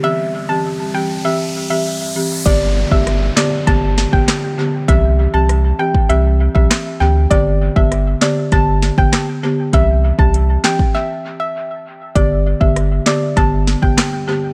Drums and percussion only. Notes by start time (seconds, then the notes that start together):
2.46 kick, closed hi-hat, crash
2.91 kick
3.07 cross-stick, closed hi-hat
3.37 snare, clap
3.67 kick, closed hi-hat
3.98 snare
4.13 kick
4.28 cross-stick, snare, clap, closed hi-hat
4.89 kick, closed hi-hat
5.49 cross-stick, closed hi-hat
5.94 kick
6.10 closed hi-hat
6.55 kick
6.71 cross-stick, snare, clap, closed hi-hat
7.31 kick, closed hi-hat
7.76 kick
7.92 cross-stick, closed hi-hat
8.22 snare, clap
8.52 kick, closed hi-hat
8.82 snare
8.98 kick
9.13 cross-stick, snare, clap, closed hi-hat
9.73 kick, closed hi-hat
10.19 kick
10.34 closed hi-hat
10.64 snare, clap
10.79 kick
12.16 kick, closed hi-hat
12.61 kick
12.76 cross-stick, closed hi-hat
13.06 snare, clap
13.37 kick, closed hi-hat
13.67 snare
13.83 kick
13.98 cross-stick, snare, clap, closed hi-hat